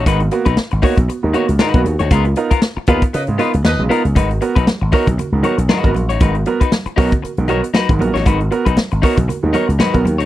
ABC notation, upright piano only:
X:1
M:4/4
L:1/16
Q:"Swing 16ths" 1/4=117
K:G#dor
V:1 name="Upright piano"
[G,,D,] [B,F] [A,B,F] z3 [A,B,F] z [B,F] [G,,D,] [A,B,F] z [G,,D,] [A,B,F] [B,F] z | [C,G,] [EA] [B,DEA] z3 [B,DEA] z [EA] [C,G,] [B,DEA] z [EA] [C,G,] [B,DEA] z | [G,,D,] [FA] [B,FA] z3 [B,FA] z [FA] [G,,D,] [B,FA] z [G,,D,] [B,FA] [FA] z | [G,,D,] [FA] [B,FA] z3 [B,FA] z [FA] [G,,D,] [B,FA] z [FA] [G,,D,] [B,FA] z |
[G,,D,] [FA] [B,FA] z3 [B,FA] z [FA] [G,,D,] [B,FA] z [G,,D,] [B,FA] [FA] z |]